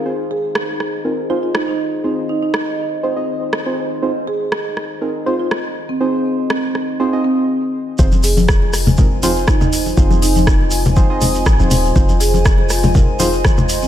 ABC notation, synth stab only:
X:1
M:4/4
L:1/16
Q:"Swing 16ths" 1/4=121
K:Fm
V:1 name="Synth stab"
[CEFAc] z6 z [CEFAB] z [CEFAc] z4 z | [CEFAc]8 [CEFAc] [CEFAe]4 [CEFAc]3 | [CEFAc] z6 z [CEFAB] z [CEFAc] z4 z | [CEFAc]8 [CEFAc] [CEFAe]3 z4 |
[CEFAc] z6 z [CEFAB] z [CEFAc] z4 z | [CEFAc]8 [CEFAc] [CEFAe]4 [CEFAc]3 | [CEFAc] z6 z [CEFAB] z [CEFAc] z4 z |]